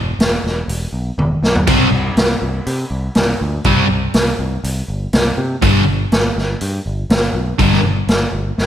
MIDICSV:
0, 0, Header, 1, 4, 480
1, 0, Start_track
1, 0, Tempo, 494234
1, 1628, Time_signature, 4, 2, 24, 8
1, 8413, End_track
2, 0, Start_track
2, 0, Title_t, "Distorted electric guitar"
2, 0, Program_c, 0, 30
2, 1625, Note_on_c, 0, 48, 90
2, 1635, Note_on_c, 0, 55, 89
2, 1637, Note_on_c, 0, 60, 96
2, 1818, Note_off_c, 0, 48, 0
2, 1824, Note_off_c, 0, 55, 0
2, 1824, Note_off_c, 0, 60, 0
2, 3554, Note_on_c, 0, 48, 84
2, 3557, Note_on_c, 0, 55, 93
2, 3559, Note_on_c, 0, 60, 100
2, 3743, Note_off_c, 0, 48, 0
2, 3745, Note_off_c, 0, 55, 0
2, 3746, Note_off_c, 0, 60, 0
2, 5459, Note_on_c, 0, 43, 95
2, 5466, Note_on_c, 0, 50, 96
2, 5473, Note_on_c, 0, 55, 100
2, 5656, Note_off_c, 0, 43, 0
2, 5659, Note_off_c, 0, 50, 0
2, 5662, Note_off_c, 0, 55, 0
2, 7373, Note_on_c, 0, 43, 102
2, 7376, Note_on_c, 0, 50, 102
2, 7378, Note_on_c, 0, 55, 113
2, 7572, Note_off_c, 0, 43, 0
2, 7573, Note_off_c, 0, 50, 0
2, 7574, Note_off_c, 0, 55, 0
2, 8413, End_track
3, 0, Start_track
3, 0, Title_t, "Picked electric bass"
3, 0, Program_c, 1, 34
3, 0, Note_on_c, 1, 28, 78
3, 110, Note_off_c, 1, 28, 0
3, 184, Note_on_c, 1, 28, 81
3, 351, Note_off_c, 1, 28, 0
3, 429, Note_on_c, 1, 28, 81
3, 594, Note_off_c, 1, 28, 0
3, 661, Note_on_c, 1, 28, 88
3, 828, Note_off_c, 1, 28, 0
3, 900, Note_on_c, 1, 35, 72
3, 1068, Note_off_c, 1, 35, 0
3, 1146, Note_on_c, 1, 28, 81
3, 1312, Note_off_c, 1, 28, 0
3, 1385, Note_on_c, 1, 35, 83
3, 1551, Note_off_c, 1, 35, 0
3, 1629, Note_on_c, 1, 36, 82
3, 1794, Note_off_c, 1, 36, 0
3, 1861, Note_on_c, 1, 36, 81
3, 2028, Note_off_c, 1, 36, 0
3, 2102, Note_on_c, 1, 36, 83
3, 2269, Note_off_c, 1, 36, 0
3, 2348, Note_on_c, 1, 36, 77
3, 2513, Note_off_c, 1, 36, 0
3, 2590, Note_on_c, 1, 48, 81
3, 2754, Note_off_c, 1, 48, 0
3, 2822, Note_on_c, 1, 36, 75
3, 2989, Note_off_c, 1, 36, 0
3, 3069, Note_on_c, 1, 36, 74
3, 3233, Note_off_c, 1, 36, 0
3, 3314, Note_on_c, 1, 38, 87
3, 3477, Note_off_c, 1, 38, 0
3, 3544, Note_on_c, 1, 36, 90
3, 3710, Note_off_c, 1, 36, 0
3, 3786, Note_on_c, 1, 36, 78
3, 3951, Note_off_c, 1, 36, 0
3, 4028, Note_on_c, 1, 36, 82
3, 4193, Note_off_c, 1, 36, 0
3, 4262, Note_on_c, 1, 36, 81
3, 4429, Note_off_c, 1, 36, 0
3, 4503, Note_on_c, 1, 36, 85
3, 4670, Note_off_c, 1, 36, 0
3, 4742, Note_on_c, 1, 31, 69
3, 4909, Note_off_c, 1, 31, 0
3, 4984, Note_on_c, 1, 36, 83
3, 5151, Note_off_c, 1, 36, 0
3, 5220, Note_on_c, 1, 48, 86
3, 5387, Note_off_c, 1, 48, 0
3, 5461, Note_on_c, 1, 31, 85
3, 5628, Note_off_c, 1, 31, 0
3, 5703, Note_on_c, 1, 31, 88
3, 5870, Note_off_c, 1, 31, 0
3, 5944, Note_on_c, 1, 31, 73
3, 6110, Note_off_c, 1, 31, 0
3, 6179, Note_on_c, 1, 31, 86
3, 6347, Note_off_c, 1, 31, 0
3, 6425, Note_on_c, 1, 43, 79
3, 6590, Note_off_c, 1, 43, 0
3, 6660, Note_on_c, 1, 31, 73
3, 6827, Note_off_c, 1, 31, 0
3, 6893, Note_on_c, 1, 31, 83
3, 7063, Note_off_c, 1, 31, 0
3, 7123, Note_on_c, 1, 35, 77
3, 7296, Note_off_c, 1, 35, 0
3, 7375, Note_on_c, 1, 31, 93
3, 7544, Note_off_c, 1, 31, 0
3, 7603, Note_on_c, 1, 31, 75
3, 7776, Note_off_c, 1, 31, 0
3, 7842, Note_on_c, 1, 31, 85
3, 8015, Note_off_c, 1, 31, 0
3, 8088, Note_on_c, 1, 31, 78
3, 8259, Note_off_c, 1, 31, 0
3, 8338, Note_on_c, 1, 31, 87
3, 8413, Note_off_c, 1, 31, 0
3, 8413, End_track
4, 0, Start_track
4, 0, Title_t, "Drums"
4, 193, Note_on_c, 9, 46, 44
4, 199, Note_on_c, 9, 38, 99
4, 290, Note_off_c, 9, 46, 0
4, 296, Note_off_c, 9, 38, 0
4, 445, Note_on_c, 9, 38, 29
4, 542, Note_off_c, 9, 38, 0
4, 672, Note_on_c, 9, 46, 47
4, 769, Note_off_c, 9, 46, 0
4, 1153, Note_on_c, 9, 48, 50
4, 1250, Note_off_c, 9, 48, 0
4, 1393, Note_on_c, 9, 38, 63
4, 1490, Note_off_c, 9, 38, 0
4, 1508, Note_on_c, 9, 43, 79
4, 1605, Note_off_c, 9, 43, 0
4, 1624, Note_on_c, 9, 46, 46
4, 1624, Note_on_c, 9, 49, 73
4, 1628, Note_on_c, 9, 36, 107
4, 1722, Note_off_c, 9, 46, 0
4, 1722, Note_off_c, 9, 49, 0
4, 1725, Note_off_c, 9, 36, 0
4, 2105, Note_on_c, 9, 46, 40
4, 2111, Note_on_c, 9, 38, 104
4, 2202, Note_off_c, 9, 46, 0
4, 2208, Note_off_c, 9, 38, 0
4, 2588, Note_on_c, 9, 46, 45
4, 2686, Note_off_c, 9, 46, 0
4, 3058, Note_on_c, 9, 46, 44
4, 3064, Note_on_c, 9, 38, 89
4, 3155, Note_off_c, 9, 46, 0
4, 3161, Note_off_c, 9, 38, 0
4, 3538, Note_on_c, 9, 46, 43
4, 3545, Note_on_c, 9, 36, 102
4, 3635, Note_off_c, 9, 46, 0
4, 3642, Note_off_c, 9, 36, 0
4, 4018, Note_on_c, 9, 46, 54
4, 4024, Note_on_c, 9, 38, 97
4, 4116, Note_off_c, 9, 46, 0
4, 4121, Note_off_c, 9, 38, 0
4, 4509, Note_on_c, 9, 46, 49
4, 4606, Note_off_c, 9, 46, 0
4, 4981, Note_on_c, 9, 46, 46
4, 4987, Note_on_c, 9, 38, 92
4, 5078, Note_off_c, 9, 46, 0
4, 5084, Note_off_c, 9, 38, 0
4, 5458, Note_on_c, 9, 46, 45
4, 5461, Note_on_c, 9, 36, 103
4, 5556, Note_off_c, 9, 46, 0
4, 5558, Note_off_c, 9, 36, 0
4, 5942, Note_on_c, 9, 46, 39
4, 5948, Note_on_c, 9, 38, 92
4, 6039, Note_off_c, 9, 46, 0
4, 6045, Note_off_c, 9, 38, 0
4, 6198, Note_on_c, 9, 38, 28
4, 6296, Note_off_c, 9, 38, 0
4, 6417, Note_on_c, 9, 46, 45
4, 6514, Note_off_c, 9, 46, 0
4, 6897, Note_on_c, 9, 46, 46
4, 6903, Note_on_c, 9, 38, 108
4, 6994, Note_off_c, 9, 46, 0
4, 7000, Note_off_c, 9, 38, 0
4, 7371, Note_on_c, 9, 46, 49
4, 7374, Note_on_c, 9, 36, 99
4, 7468, Note_off_c, 9, 46, 0
4, 7471, Note_off_c, 9, 36, 0
4, 7506, Note_on_c, 9, 38, 31
4, 7603, Note_off_c, 9, 38, 0
4, 7852, Note_on_c, 9, 46, 47
4, 7857, Note_on_c, 9, 38, 89
4, 7949, Note_off_c, 9, 46, 0
4, 7955, Note_off_c, 9, 38, 0
4, 8333, Note_on_c, 9, 38, 51
4, 8413, Note_off_c, 9, 38, 0
4, 8413, End_track
0, 0, End_of_file